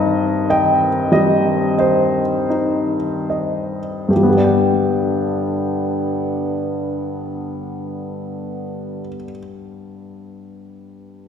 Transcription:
Already playing: G2 D#3 C4 D#4 D#5
0.50 D#5 G5
1.12 G3 D#5
1.78 C5 D#5
2.50 D#4
3.30 D#5
4.09 G2 D3 B3 G4
4.16 G3
4.23 B3
4.30 G4
4.37 D5
4.44 G5

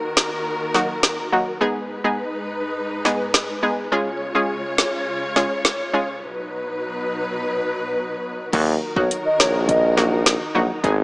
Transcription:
Already playing: D#2 D#3 F#4 A#4
0.17 snare
0.74 F#3 A#3 D#4 F#4, snare
1.03 snare
1.32 F#3 A#3 D#4 F#4
1.61 G#2 G#3 B3 D#4 G#4 B4
2.04 G#3 B3 D#4 G#4
3.05 G#3 B3 D#4 G#4, snare
3.34 snare
3.63 G#3 B3 D#4 G#4
3.92 C#3 G#3 C#4 F4 G#4 C#5
4.35 G#3 C#4 F4 G#4
4.78 snare
5.36 G#3 C#4 F4 G#4, snare
5.65 snare
5.93 G#3 C#4 F4 G#4
6.23 B2 F#3 D#4 B4
8.53 D#2 D#3 F#3 A#3 D#4 F#4 A#4, kick, closed hi-hat, crash
8.96 B1 F#3 A#3 D#4 F#4 C#5, kick
9.11 closed hi-hat
9.25 D#5
9.40 A#1 C#5, snare
9.69 D#5, kick, closed hi-hat
9.97 F#3 A#3 D#4 F#4, snare
10.26 snare, closed hi-hat
10.55 A#1 F#3 A#3 D#4 F#4
10.84 G#1 G#3 B3 D#4 G#4, kick, closed hi-hat

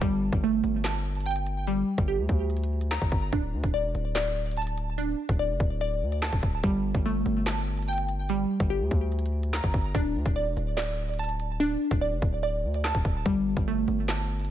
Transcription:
0.01 G1 G3, kick, closed hi-hat
0.33 G1, kick, closed hi-hat
0.44 A3
0.64 G1, closed hi-hat
0.84 A5, snare, clap, closed hi-hat
1.15 closed hi-hat
1.21 closed hi-hat
1.26 G5, closed hi-hat
1.31 closed hi-hat
1.36 closed hi-hat
1.47 closed hi-hat
1.67 G3, closed hi-hat
1.98 G1, kick, closed hi-hat
2.08 G4
2.19 D2
2.29 D2, kick, closed hi-hat
2.50 closed hi-hat
2.57 closed hi-hat
2.64 closed hi-hat
2.81 closed hi-hat
2.91 A#5, snare, clap
3.02 G1, kick
3.12 G1, kick, open hi-hat
3.33 D1 D4, kick, closed hi-hat
3.53 D2
3.64 D1, kick, closed hi-hat
3.74 D5
3.84 E1
3.95 D1, closed hi-hat
4.15 D5, snare, clap, closed hi-hat
4.46 closed hi-hat
4.52 closed hi-hat
4.57 A5, closed hi-hat
4.62 closed hi-hat
4.67 closed hi-hat
4.78 closed hi-hat
4.98 D4, closed hi-hat
5.29 D1, kick, closed hi-hat
5.39 D5
5.50 F1
5.60 D1, kick, closed hi-hat
5.81 D5, closed hi-hat
6.02 D2
6.12 closed hi-hat
6.22 A5, snare, clap
6.33 D1, kick
6.43 D1, kick, open hi-hat
6.63 G1 G3, kick, closed hi-hat
6.95 G1, kick, closed hi-hat
7.06 A3
7.26 G1, closed hi-hat
7.46 A5, snare, clap, closed hi-hat
7.77 closed hi-hat
7.83 closed hi-hat
7.88 G5, closed hi-hat
7.93 closed hi-hat
7.98 closed hi-hat
8.09 closed hi-hat
8.29 G3, closed hi-hat
8.60 G1, kick, closed hi-hat
8.70 G4
8.81 D2
8.91 D2, kick, closed hi-hat
9.12 closed hi-hat
9.19 closed hi-hat
9.26 closed hi-hat
9.43 closed hi-hat
9.53 A#5, snare, clap
9.64 G1, kick
9.74 G1, kick, open hi-hat
9.95 D1 D4, kick, closed hi-hat
10.15 D2
10.26 D1, kick, closed hi-hat
10.36 D5
10.46 E1
10.57 D1, closed hi-hat
10.77 D5, snare, clap, closed hi-hat
11.09 closed hi-hat
11.14 closed hi-hat
11.19 A5, closed hi-hat
11.24 closed hi-hat
11.29 closed hi-hat
11.40 closed hi-hat
11.60 D4, closed hi-hat
11.91 D1, kick, closed hi-hat
12.01 D5
12.12 F1
12.22 D1, kick, closed hi-hat
12.43 D5, closed hi-hat
12.64 D2
12.74 closed hi-hat
12.84 A5, snare, clap
12.95 D1, kick
13.05 D1, kick, open hi-hat
13.26 G1 G3, kick, closed hi-hat
13.57 G1, kick, closed hi-hat
13.68 A3
13.88 G1, closed hi-hat
14.08 A5, snare, clap, closed hi-hat
14.40 closed hi-hat
14.45 closed hi-hat

